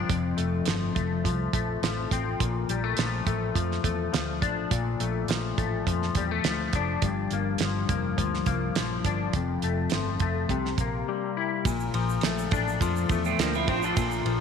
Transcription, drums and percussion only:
0.10 kick loud
0.10 closed hi-hat medium
0.38 closed hi-hat medium
0.66 snare loud
0.66 closed hi-hat medium
0.96 kick medium
0.96 closed hi-hat medium
1.25 kick medium
1.25 closed hi-hat medium
1.53 kick medium
1.53 closed hi-hat medium
1.83 snare loud
1.83 closed hi-hat medium
2.11 kick medium
2.11 closed hi-hat medium
2.40 kick loud
2.40 closed hi-hat medium
2.69 closed hi-hat medium
2.97 snare loud
2.97 closed hi-hat medium
3.27 kick medium
3.27 closed hi-hat medium
3.55 kick medium
3.55 closed hi-hat medium
3.72 snare soft
3.84 kick medium
3.84 closed hi-hat medium
4.14 snare loud
4.14 closed hi-hat medium
4.42 kick medium
4.42 closed hi-hat medium
4.71 kick loud
4.71 closed hi-hat medium
5.00 closed hi-hat medium
5.28 snare loud
5.28 closed hi-hat medium
5.58 kick medium
5.58 closed hi-hat medium
5.87 kick medium
5.87 closed hi-hat medium
6.02 snare soft
6.15 kick medium
6.15 closed hi-hat medium
6.44 snare loud
6.44 closed hi-hat medium
6.73 kick medium
6.73 closed hi-hat medium
7.02 kick loud
7.02 closed hi-hat medium
7.31 closed hi-hat medium
7.58 snare loud
7.58 closed hi-hat medium
7.89 kick loud
7.89 closed hi-hat medium
8.18 kick medium
8.18 closed hi-hat medium
8.34 snare soft
8.46 kick medium
8.46 closed hi-hat medium
8.75 snare loud
8.75 closed hi-hat medium
9.04 kick medium
9.04 closed hi-hat medium
9.33 kick loud
9.33 closed hi-hat medium
9.62 closed hi-hat medium
9.90 snare loud
9.90 closed hi-hat medium
10.20 kick medium
10.20 closed hi-hat medium
10.49 kick medium
10.49 closed hi-hat medium
10.66 snare soft
10.78 kick medium
10.78 closed hi-hat medium
11.65 kick loud
11.65 ride medium
11.65 shaker medium
11.80 shaker medium
11.94 ride medium
12.09 shaker medium
12.21 snare loud
12.21 ride medium
12.21 shaker medium
12.38 shaker medium
12.51 kick loud
12.51 ride medium
12.51 shaker soft
12.68 shaker medium
12.81 kick medium
12.81 ride medium
12.81 shaker medium
12.96 shaker medium
13.09 kick medium
13.09 ride medium
13.09 shaker soft
13.25 shaker soft
13.39 snare loud
13.39 ride medium
13.39 shaker medium
13.54 shaker soft
13.68 kick loud
13.68 ride medium
13.82 shaker soft
13.97 kick loud
13.97 ride medium
13.97 shaker medium
14.11 shaker medium
14.26 ride medium

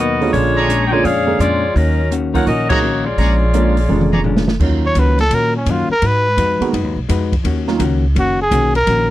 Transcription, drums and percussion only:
0.22 open hi-hat soft
0.34 kick soft
0.34 open hi-hat soft
0.70 closed hi-hat medium
1.05 kick soft
1.05 open hi-hat soft
1.40 cross-stick medium
1.40 closed hi-hat medium
1.76 kick soft
1.76 open hi-hat medium
2.12 closed hi-hat medium
2.35 kick medium
2.35 open hi-hat soft
2.47 kick soft
2.47 open hi-hat soft
2.70 kick loud
2.70 crash medium
3.18 kick soft
3.18 open hi-hat soft
3.54 closed hi-hat medium
3.77 open hi-hat soft
3.89 mid tom soft
4.01 mid tom medium
4.13 mid tom medium
4.24 floor tom medium
4.37 snare medium
4.48 snare medium
4.60 kick medium
4.60 crash medium
4.95 kick soft
4.95 hi-hat pedal medium
4.95 ride medium
5.18 snare soft
5.18 ride soft
5.31 kick soft
5.31 ride medium
5.66 kick soft
5.66 hi-hat pedal medium
5.66 ride medium
6.02 kick soft
6.02 ride medium
6.38 kick soft
6.38 hi-hat pedal medium
6.38 ride medium
6.62 ride soft
6.73 kick soft
6.73 ride medium
7.09 kick soft
7.09 hi-hat pedal medium
7.09 ride medium
7.32 kick medium
7.32 ride soft
7.45 kick soft
7.45 ride medium
7.67 snare soft
7.80 kick soft
7.80 hi-hat pedal medium
7.80 ride medium
8.16 kick soft
8.16 ride medium
8.51 kick soft
8.51 hi-hat pedal medium
8.51 ride medium
8.75 ride medium
8.87 kick soft
8.87 ride medium

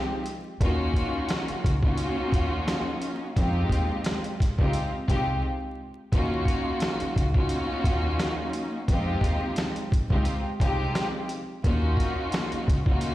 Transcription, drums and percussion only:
0.26 closed hi-hat medium
0.61 kick loud
0.61 closed hi-hat medium
0.94 kick medium
0.94 closed hi-hat medium
1.29 snare loud
1.29 closed hi-hat medium
1.48 closed hi-hat soft
1.64 kick loud
1.64 closed hi-hat medium
1.83 kick medium
1.98 closed hi-hat medium
2.32 kick medium
2.32 closed hi-hat medium
2.68 snare loud
2.68 closed hi-hat medium
3.02 closed hi-hat medium
3.36 kick loud
3.36 closed hi-hat medium
3.70 kick medium
3.70 closed hi-hat medium
4.04 snare loud
4.04 closed hi-hat medium
4.24 closed hi-hat soft
4.40 kick loud
4.40 snare soft
4.40 closed hi-hat medium
4.59 kick medium
4.73 closed hi-hat medium
5.08 kick medium
5.08 closed hi-hat medium
6.12 kick loud
6.12 closed hi-hat medium
6.45 kick medium
6.45 closed hi-hat medium
6.80 snare loud
6.80 closed hi-hat medium
7.00 closed hi-hat soft
7.16 kick loud
7.16 closed hi-hat medium
7.34 kick medium
7.49 closed hi-hat medium
7.84 kick medium
7.84 closed hi-hat medium
8.19 snare loud
8.19 closed hi-hat medium
8.53 closed hi-hat medium
8.88 kick loud
8.88 closed hi-hat medium
9.21 kick medium
9.21 closed hi-hat medium
9.56 snare loud
9.56 closed hi-hat medium
9.76 closed hi-hat soft
9.92 kick loud
9.92 closed hi-hat medium
10.10 kick medium
10.25 closed hi-hat medium
10.60 kick medium
10.60 closed hi-hat medium
10.95 snare loud
10.95 closed hi-hat medium
11.29 closed hi-hat medium
11.64 kick loud
11.64 closed hi-hat medium
11.97 kick medium
11.97 closed hi-hat medium
12.32 snare loud
12.32 closed hi-hat medium
12.52 closed hi-hat soft
12.68 kick loud
12.68 closed hi-hat medium
12.86 kick medium
13.01 closed hi-hat medium

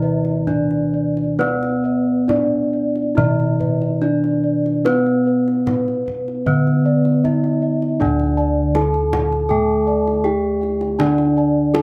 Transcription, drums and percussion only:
0.25 kendang slap soft
0.47 kendang low soft
0.71 kendang slap soft
1.17 kendang slap soft
1.41 kendang high medium
1.63 kendang slap soft
2.29 kendang high soft
2.29 kendang low soft
2.95 kendang slap soft
3.18 kendang high soft
3.18 kendang low medium
3.40 kendang slap soft
3.61 kendang low medium
3.82 kendang slap soft
4.24 kendang slap soft
4.66 kendang slap soft
4.86 kendang high soft
5.06 kendang slap soft
5.48 kendang slap soft
5.67 kendang high soft
5.67 kendang low medium
5.88 kendang slap soft
6.08 kendang low medium
6.28 kendang slap soft
6.46 kendang low medium
6.67 kendang slap soft
7.05 kendang slap soft
7.25 kendang low soft
7.44 kendang slap soft
7.82 kendang slap soft
8.02 kendang low medium
8.19 kendang slap soft
8.75 kendang high medium
8.94 kendang slap soft
9.13 kendang high medium
9.13 kendang low medium
9.32 kendang slap soft
9.51 kendang low medium
10.07 kendang slap soft
10.63 kendang slap soft
10.81 kendang slap soft
11.00 kendang low loud
11.18 kendang slap soft
11.75 kendang high medium

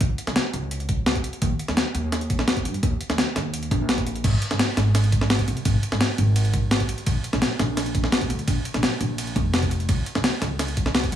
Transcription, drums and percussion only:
0.01 kick loud
0.01 closed hi-hat medium
0.18 closed hi-hat medium
0.27 snare soft
0.27 closed hi-hat soft
0.36 snare loud
0.36 closed hi-hat medium
0.54 closed hi-hat medium
0.71 closed hi-hat medium
0.80 closed hi-hat soft
0.89 kick loud
0.89 closed hi-hat medium
1.06 snare loud
1.06 closed hi-hat medium
1.15 kick medium
1.15 closed hi-hat soft
1.24 closed hi-hat medium
1.33 closed hi-hat soft
1.42 kick loud
1.42 closed hi-hat loud
1.59 closed hi-hat medium
1.68 snare soft
1.68 closed hi-hat soft
1.77 snare loud
1.77 closed hi-hat loud
1.95 closed hi-hat medium
2.12 snare soft
2.12 closed hi-hat loud
2.21 closed hi-hat soft
2.30 kick loud
2.30 closed hi-hat medium
2.39 snare medium
2.48 snare loud
2.48 closed hi-hat medium
2.57 kick medium
2.57 closed hi-hat soft
2.65 closed hi-hat medium
2.74 closed hi-hat soft
2.83 kick loud
2.83 closed hi-hat loud
3.01 closed hi-hat medium
3.10 snare soft
3.10 closed hi-hat soft
3.18 snare loud
3.18 closed hi-hat loud
3.36 snare medium
3.36 closed hi-hat medium
3.54 closed hi-hat loud
3.63 closed hi-hat soft
3.71 kick loud
3.71 closed hi-hat medium
3.89 snare loud
3.89 closed hi-hat medium
3.98 kick medium
3.98 closed hi-hat soft
4.07 closed hi-hat medium
4.16 closed hi-hat soft
4.24 kick loud
4.24 closed hi-hat medium
4.24 crash medium
4.24 ride medium
4.42 closed hi-hat medium
4.42 ride medium
4.51 snare soft
4.51 closed hi-hat soft
4.59 snare loud
4.59 closed hi-hat medium
4.59 ride medium
4.77 snare medium
4.77 closed hi-hat medium
4.77 ride medium
4.95 snare medium
4.95 closed hi-hat loud
4.95 ride medium
5.04 closed hi-hat soft
5.12 kick loud
5.12 closed hi-hat medium
5.12 ride medium
5.21 snare medium
5.30 snare loud
5.30 closed hi-hat medium
5.30 ride medium
5.39 kick medium
5.39 closed hi-hat soft
5.48 closed hi-hat medium
5.48 ride medium
5.57 closed hi-hat soft
5.65 kick loud
5.65 closed hi-hat loud
5.65 ride medium
5.83 closed hi-hat medium
5.83 ride soft
5.92 snare medium
5.92 closed hi-hat soft
6.01 snare loud
6.01 closed hi-hat loud
6.01 ride medium
6.18 closed hi-hat medium
6.18 ride medium
6.36 closed hi-hat medium
6.36 ride medium
6.45 closed hi-hat soft
6.54 kick loud
6.54 closed hi-hat medium
6.54 ride medium
6.71 snare loud
6.71 closed hi-hat medium
6.71 ride medium
6.80 kick medium
6.80 closed hi-hat soft
6.89 closed hi-hat medium
6.89 ride medium
6.98 closed hi-hat soft
7.06 kick loud
7.06 closed hi-hat medium
7.06 ride medium
7.24 closed hi-hat medium
7.24 ride soft
7.33 snare soft
7.33 closed hi-hat soft
7.42 snare loud
7.42 closed hi-hat medium
7.42 ride medium
7.59 snare medium
7.59 closed hi-hat medium
7.59 ride medium
7.77 snare medium
7.77 closed hi-hat medium
7.77 ride medium
7.86 closed hi-hat soft
7.95 kick loud
7.95 closed hi-hat medium
7.95 ride soft
8.04 snare medium
8.12 snare loud
8.12 closed hi-hat medium
8.12 ride medium
8.21 kick medium
8.21 closed hi-hat soft
8.30 closed hi-hat medium
8.30 ride medium
8.39 closed hi-hat soft
8.48 kick loud
8.48 closed hi-hat medium
8.48 ride medium
8.65 closed hi-hat medium
8.65 ride soft
8.74 snare soft
8.74 closed hi-hat soft
8.83 snare loud
8.83 closed hi-hat medium
8.83 ride medium
9.01 closed hi-hat medium
9.01 ride soft
9.18 closed hi-hat medium
9.18 ride medium
9.27 closed hi-hat soft
9.36 kick loud
9.36 closed hi-hat medium
9.36 ride medium
9.54 snare loud
9.54 closed hi-hat medium
9.54 ride medium
9.62 kick medium
9.62 closed hi-hat soft
9.71 closed hi-hat medium
9.71 ride medium
9.80 closed hi-hat soft
9.89 kick loud
9.89 closed hi-hat medium
9.89 ride medium
10.06 closed hi-hat medium
10.06 ride soft
10.15 snare soft
10.15 closed hi-hat soft
10.24 snare loud
10.24 closed hi-hat medium
10.24 ride medium
10.42 snare medium
10.42 closed hi-hat medium
10.42 ride medium
10.59 snare soft
10.59 closed hi-hat medium
10.59 ride medium
10.68 closed hi-hat soft
10.77 kick loud
10.77 closed hi-hat medium
10.77 ride medium
10.86 snare medium
10.95 snare loud
10.95 closed hi-hat medium
10.95 ride medium
11.04 kick medium
11.04 closed hi-hat soft
11.12 closed hi-hat medium
11.12 ride medium

